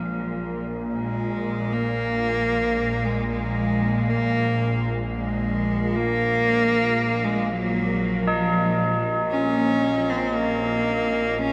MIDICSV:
0, 0, Header, 1, 4, 480
1, 0, Start_track
1, 0, Key_signature, -5, "minor"
1, 0, Tempo, 1054482
1, 422, Time_signature, 4, 2, 24, 8
1, 2819, Tempo, 1038062
1, 5285, End_track
2, 0, Start_track
2, 0, Title_t, "Tubular bells"
2, 0, Program_c, 0, 14
2, 0, Control_c, 0, 64, 127
2, 0, Note_on_c, 0, 70, 57
2, 2583, Note_off_c, 0, 70, 0
2, 3782, Note_on_c, 0, 63, 65
2, 5285, Note_off_c, 0, 63, 0
2, 5285, End_track
3, 0, Start_track
3, 0, Title_t, "Cello"
3, 0, Program_c, 1, 42
3, 0, Note_on_c, 1, 53, 78
3, 179, Note_off_c, 1, 53, 0
3, 433, Note_on_c, 1, 56, 81
3, 788, Note_on_c, 1, 58, 104
3, 795, Note_off_c, 1, 56, 0
3, 1387, Note_on_c, 1, 56, 89
3, 1394, Note_off_c, 1, 58, 0
3, 1502, Note_off_c, 1, 56, 0
3, 1505, Note_on_c, 1, 56, 91
3, 1864, Note_on_c, 1, 58, 95
3, 1871, Note_off_c, 1, 56, 0
3, 2222, Note_off_c, 1, 58, 0
3, 2349, Note_on_c, 1, 56, 91
3, 2711, Note_on_c, 1, 58, 119
3, 2718, Note_off_c, 1, 56, 0
3, 3305, Note_on_c, 1, 56, 104
3, 3312, Note_off_c, 1, 58, 0
3, 3427, Note_on_c, 1, 54, 99
3, 3434, Note_off_c, 1, 56, 0
3, 3785, Note_on_c, 1, 53, 91
3, 3792, Note_off_c, 1, 54, 0
3, 4142, Note_off_c, 1, 53, 0
3, 4259, Note_on_c, 1, 61, 114
3, 4623, Note_on_c, 1, 60, 101
3, 4630, Note_off_c, 1, 61, 0
3, 4740, Note_on_c, 1, 58, 104
3, 4747, Note_off_c, 1, 60, 0
3, 5220, Note_on_c, 1, 61, 124
3, 5227, Note_off_c, 1, 58, 0
3, 5285, Note_off_c, 1, 61, 0
3, 5285, End_track
4, 0, Start_track
4, 0, Title_t, "Synth drone"
4, 0, Program_c, 2, 95
4, 0, Note_on_c, 2, 34, 67
4, 0, Note_on_c, 2, 46, 73
4, 5285, Note_off_c, 2, 34, 0
4, 5285, Note_off_c, 2, 46, 0
4, 5285, End_track
0, 0, End_of_file